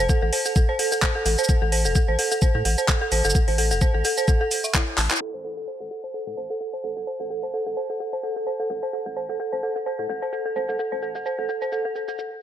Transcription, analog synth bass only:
0, 0, Header, 1, 2, 480
1, 0, Start_track
1, 0, Key_signature, 0, "minor"
1, 0, Tempo, 465116
1, 1538, Time_signature, 4, 2, 24, 8
1, 12820, End_track
2, 0, Start_track
2, 0, Title_t, "Analog synth bass"
2, 0, Program_c, 0, 38
2, 230, Note_on_c, 0, 33, 79
2, 317, Note_off_c, 0, 33, 0
2, 1298, Note_on_c, 0, 33, 95
2, 1405, Note_off_c, 0, 33, 0
2, 1670, Note_on_c, 0, 33, 97
2, 1910, Note_on_c, 0, 28, 91
2, 1926, Note_off_c, 0, 33, 0
2, 1997, Note_off_c, 0, 28, 0
2, 2151, Note_on_c, 0, 33, 79
2, 2237, Note_off_c, 0, 33, 0
2, 2631, Note_on_c, 0, 45, 94
2, 2717, Note_off_c, 0, 45, 0
2, 2738, Note_on_c, 0, 33, 107
2, 2845, Note_off_c, 0, 33, 0
2, 3218, Note_on_c, 0, 33, 98
2, 3325, Note_off_c, 0, 33, 0
2, 3351, Note_on_c, 0, 31, 83
2, 3437, Note_off_c, 0, 31, 0
2, 3590, Note_on_c, 0, 33, 96
2, 3830, Note_on_c, 0, 28, 90
2, 3846, Note_off_c, 0, 33, 0
2, 3917, Note_off_c, 0, 28, 0
2, 4070, Note_on_c, 0, 33, 77
2, 4157, Note_off_c, 0, 33, 0
2, 5137, Note_on_c, 0, 33, 96
2, 5245, Note_off_c, 0, 33, 0
2, 5510, Note_on_c, 0, 33, 90
2, 5750, Note_on_c, 0, 28, 80
2, 5765, Note_off_c, 0, 33, 0
2, 5837, Note_off_c, 0, 28, 0
2, 5990, Note_on_c, 0, 33, 74
2, 6077, Note_off_c, 0, 33, 0
2, 6470, Note_on_c, 0, 45, 86
2, 6557, Note_off_c, 0, 45, 0
2, 6577, Note_on_c, 0, 33, 98
2, 6684, Note_off_c, 0, 33, 0
2, 7057, Note_on_c, 0, 33, 88
2, 7165, Note_off_c, 0, 33, 0
2, 7190, Note_on_c, 0, 31, 77
2, 7277, Note_off_c, 0, 31, 0
2, 7430, Note_on_c, 0, 33, 88
2, 7670, Note_on_c, 0, 28, 80
2, 7686, Note_off_c, 0, 33, 0
2, 7757, Note_off_c, 0, 28, 0
2, 7910, Note_on_c, 0, 33, 75
2, 7997, Note_off_c, 0, 33, 0
2, 8977, Note_on_c, 0, 33, 88
2, 9085, Note_off_c, 0, 33, 0
2, 9350, Note_on_c, 0, 33, 90
2, 9589, Note_on_c, 0, 28, 81
2, 9605, Note_off_c, 0, 33, 0
2, 9676, Note_off_c, 0, 28, 0
2, 9830, Note_on_c, 0, 33, 74
2, 9917, Note_off_c, 0, 33, 0
2, 10309, Note_on_c, 0, 45, 84
2, 10396, Note_off_c, 0, 45, 0
2, 10417, Note_on_c, 0, 33, 100
2, 10524, Note_off_c, 0, 33, 0
2, 10897, Note_on_c, 0, 33, 94
2, 11004, Note_off_c, 0, 33, 0
2, 11030, Note_on_c, 0, 31, 77
2, 11117, Note_off_c, 0, 31, 0
2, 11269, Note_on_c, 0, 33, 92
2, 11509, Note_on_c, 0, 28, 80
2, 11525, Note_off_c, 0, 33, 0
2, 11597, Note_off_c, 0, 28, 0
2, 11750, Note_on_c, 0, 33, 73
2, 11837, Note_off_c, 0, 33, 0
2, 12820, End_track
0, 0, End_of_file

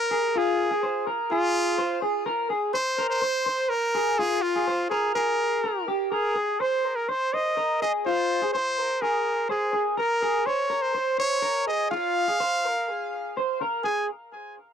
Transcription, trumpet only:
0, 0, Header, 1, 2, 480
1, 0, Start_track
1, 0, Tempo, 481928
1, 350, Time_signature, 4, 2, 24, 8
1, 14673, End_track
2, 0, Start_track
2, 0, Title_t, "Trumpet"
2, 0, Program_c, 0, 56
2, 0, Note_on_c, 0, 70, 104
2, 376, Note_on_c, 0, 68, 85
2, 391, Note_off_c, 0, 70, 0
2, 1079, Note_off_c, 0, 68, 0
2, 1313, Note_on_c, 0, 65, 120
2, 1985, Note_off_c, 0, 65, 0
2, 2733, Note_on_c, 0, 72, 108
2, 3068, Note_off_c, 0, 72, 0
2, 3088, Note_on_c, 0, 72, 116
2, 3678, Note_on_c, 0, 70, 102
2, 3693, Note_off_c, 0, 72, 0
2, 4169, Note_on_c, 0, 68, 100
2, 4184, Note_off_c, 0, 70, 0
2, 4403, Note_on_c, 0, 65, 96
2, 4418, Note_off_c, 0, 68, 0
2, 4874, Note_off_c, 0, 65, 0
2, 4880, Note_on_c, 0, 68, 87
2, 5109, Note_off_c, 0, 68, 0
2, 5134, Note_on_c, 0, 70, 91
2, 5814, Note_off_c, 0, 70, 0
2, 6092, Note_on_c, 0, 68, 84
2, 6581, Note_on_c, 0, 72, 84
2, 6596, Note_off_c, 0, 68, 0
2, 6930, Note_on_c, 0, 70, 73
2, 6945, Note_off_c, 0, 72, 0
2, 7066, Note_on_c, 0, 72, 83
2, 7081, Note_off_c, 0, 70, 0
2, 7305, Note_on_c, 0, 75, 97
2, 7320, Note_off_c, 0, 72, 0
2, 7783, Note_off_c, 0, 75, 0
2, 7792, Note_on_c, 0, 75, 83
2, 7898, Note_off_c, 0, 75, 0
2, 8026, Note_on_c, 0, 72, 95
2, 8471, Note_off_c, 0, 72, 0
2, 8497, Note_on_c, 0, 72, 90
2, 8981, Note_on_c, 0, 70, 85
2, 8996, Note_off_c, 0, 72, 0
2, 9461, Note_off_c, 0, 70, 0
2, 9467, Note_on_c, 0, 68, 88
2, 9802, Note_off_c, 0, 68, 0
2, 9944, Note_on_c, 0, 70, 100
2, 10422, Note_on_c, 0, 73, 95
2, 10437, Note_off_c, 0, 70, 0
2, 10775, Note_on_c, 0, 72, 100
2, 10790, Note_off_c, 0, 73, 0
2, 11143, Note_off_c, 0, 72, 0
2, 11150, Note_on_c, 0, 73, 110
2, 11597, Note_off_c, 0, 73, 0
2, 11630, Note_on_c, 0, 75, 96
2, 11854, Note_off_c, 0, 75, 0
2, 11867, Note_on_c, 0, 77, 114
2, 13271, Note_off_c, 0, 77, 0
2, 13785, Note_on_c, 0, 80, 87
2, 14012, Note_off_c, 0, 80, 0
2, 14673, End_track
0, 0, End_of_file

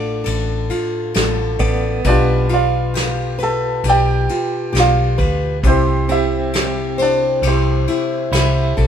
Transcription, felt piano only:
0, 0, Header, 1, 2, 480
1, 0, Start_track
1, 0, Tempo, 896861
1, 1099, Time_signature, 4, 2, 24, 8
1, 4747, End_track
2, 0, Start_track
2, 0, Title_t, "Felt piano"
2, 0, Program_c, 0, 0
2, 1107, Note_on_c, 0, 74, 92
2, 1114, Note_on_c, 0, 65, 68
2, 1114, Note_on_c, 0, 67, 67
2, 1118, Note_on_c, 0, 62, 60
2, 1330, Note_off_c, 0, 65, 0
2, 1330, Note_off_c, 0, 67, 0
2, 1332, Note_off_c, 0, 62, 0
2, 1348, Note_off_c, 0, 74, 0
2, 1355, Note_on_c, 0, 65, 65
2, 1356, Note_on_c, 0, 74, 64
2, 1359, Note_on_c, 0, 77, 86
2, 1805, Note_off_c, 0, 65, 0
2, 1806, Note_off_c, 0, 74, 0
2, 1835, Note_on_c, 0, 69, 75
2, 1837, Note_on_c, 0, 81, 89
2, 1843, Note_off_c, 0, 77, 0
2, 2050, Note_off_c, 0, 69, 0
2, 2075, Note_off_c, 0, 81, 0
2, 2079, Note_on_c, 0, 74, 68
2, 2085, Note_on_c, 0, 67, 66
2, 2085, Note_on_c, 0, 79, 93
2, 2527, Note_off_c, 0, 74, 0
2, 2530, Note_off_c, 0, 67, 0
2, 2561, Note_on_c, 0, 65, 62
2, 2564, Note_on_c, 0, 74, 54
2, 2566, Note_off_c, 0, 79, 0
2, 2566, Note_on_c, 0, 77, 82
2, 2889, Note_off_c, 0, 65, 0
2, 2890, Note_off_c, 0, 74, 0
2, 2891, Note_off_c, 0, 77, 0
2, 3031, Note_on_c, 0, 60, 60
2, 3034, Note_on_c, 0, 64, 60
2, 3035, Note_on_c, 0, 67, 63
2, 3040, Note_on_c, 0, 72, 84
2, 3249, Note_off_c, 0, 60, 0
2, 3250, Note_off_c, 0, 64, 0
2, 3251, Note_off_c, 0, 67, 0
2, 3271, Note_on_c, 0, 64, 63
2, 3272, Note_on_c, 0, 67, 59
2, 3275, Note_on_c, 0, 76, 83
2, 3277, Note_off_c, 0, 72, 0
2, 3724, Note_off_c, 0, 64, 0
2, 3724, Note_off_c, 0, 67, 0
2, 3757, Note_on_c, 0, 62, 59
2, 3757, Note_on_c, 0, 74, 79
2, 3761, Note_off_c, 0, 76, 0
2, 3972, Note_off_c, 0, 62, 0
2, 3995, Note_off_c, 0, 74, 0
2, 3999, Note_on_c, 0, 67, 49
2, 4000, Note_on_c, 0, 64, 52
2, 4001, Note_on_c, 0, 60, 50
2, 4001, Note_on_c, 0, 72, 64
2, 4691, Note_off_c, 0, 64, 0
2, 4691, Note_off_c, 0, 67, 0
2, 4692, Note_off_c, 0, 60, 0
2, 4692, Note_off_c, 0, 72, 0
2, 4747, End_track
0, 0, End_of_file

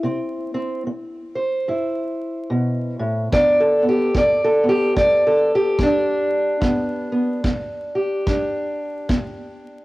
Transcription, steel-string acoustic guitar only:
0, 0, Header, 1, 2, 480
1, 0, Start_track
1, 0, Tempo, 823045
1, 20, Time_signature, 4, 2, 24, 8
1, 5743, End_track
2, 0, Start_track
2, 0, Title_t, "Steel-string acoustic guitar"
2, 0, Program_c, 0, 25
2, 0, Note_on_c, 0, 64, 104
2, 18, Note_on_c, 0, 48, 78
2, 23, Note_on_c, 0, 60, 50
2, 310, Note_off_c, 0, 60, 0
2, 316, Note_on_c, 0, 60, 48
2, 461, Note_off_c, 0, 48, 0
2, 498, Note_off_c, 0, 60, 0
2, 505, Note_on_c, 0, 60, 60
2, 789, Note_on_c, 0, 72, 48
2, 820, Note_off_c, 0, 64, 0
2, 944, Note_off_c, 0, 60, 0
2, 979, Note_on_c, 0, 43, 66
2, 983, Note_on_c, 0, 64, 47
2, 1421, Note_off_c, 0, 43, 0
2, 1457, Note_on_c, 0, 47, 66
2, 1743, Note_off_c, 0, 47, 0
2, 1745, Note_on_c, 0, 45, 62
2, 1916, Note_off_c, 0, 72, 0
2, 1918, Note_off_c, 0, 64, 0
2, 1934, Note_off_c, 0, 45, 0
2, 1936, Note_on_c, 0, 43, 70
2, 1940, Note_on_c, 0, 59, 49
2, 1943, Note_on_c, 0, 74, 112
2, 1944, Note_on_c, 0, 62, 47
2, 2099, Note_off_c, 0, 62, 0
2, 2102, Note_on_c, 0, 69, 79
2, 2228, Note_off_c, 0, 59, 0
2, 2230, Note_on_c, 0, 59, 46
2, 2261, Note_off_c, 0, 74, 0
2, 2267, Note_on_c, 0, 67, 81
2, 2379, Note_off_c, 0, 43, 0
2, 2413, Note_off_c, 0, 59, 0
2, 2415, Note_on_c, 0, 59, 62
2, 2423, Note_off_c, 0, 67, 0
2, 2434, Note_on_c, 0, 74, 92
2, 2580, Note_off_c, 0, 69, 0
2, 2592, Note_on_c, 0, 69, 84
2, 2697, Note_off_c, 0, 59, 0
2, 2704, Note_on_c, 0, 59, 50
2, 2732, Note_off_c, 0, 74, 0
2, 2735, Note_on_c, 0, 67, 87
2, 2888, Note_on_c, 0, 43, 64
2, 2896, Note_off_c, 0, 67, 0
2, 2898, Note_on_c, 0, 74, 116
2, 3065, Note_off_c, 0, 69, 0
2, 3073, Note_on_c, 0, 69, 83
2, 3219, Note_off_c, 0, 74, 0
2, 3240, Note_on_c, 0, 67, 82
2, 3335, Note_off_c, 0, 43, 0
2, 3374, Note_off_c, 0, 59, 0
2, 3381, Note_on_c, 0, 59, 67
2, 3386, Note_off_c, 0, 69, 0
2, 3402, Note_on_c, 0, 62, 106
2, 3822, Note_off_c, 0, 59, 0
2, 3853, Note_on_c, 0, 43, 72
2, 3859, Note_on_c, 0, 59, 52
2, 3869, Note_off_c, 0, 67, 0
2, 4146, Note_off_c, 0, 59, 0
2, 4153, Note_on_c, 0, 59, 44
2, 4298, Note_off_c, 0, 43, 0
2, 4335, Note_off_c, 0, 59, 0
2, 4342, Note_on_c, 0, 59, 63
2, 4637, Note_on_c, 0, 67, 52
2, 4783, Note_off_c, 0, 59, 0
2, 4815, Note_off_c, 0, 62, 0
2, 4818, Note_on_c, 0, 43, 67
2, 4822, Note_on_c, 0, 62, 47
2, 5261, Note_off_c, 0, 43, 0
2, 5301, Note_on_c, 0, 59, 70
2, 5743, Note_off_c, 0, 59, 0
2, 5743, Note_off_c, 0, 62, 0
2, 5743, Note_off_c, 0, 67, 0
2, 5743, End_track
0, 0, End_of_file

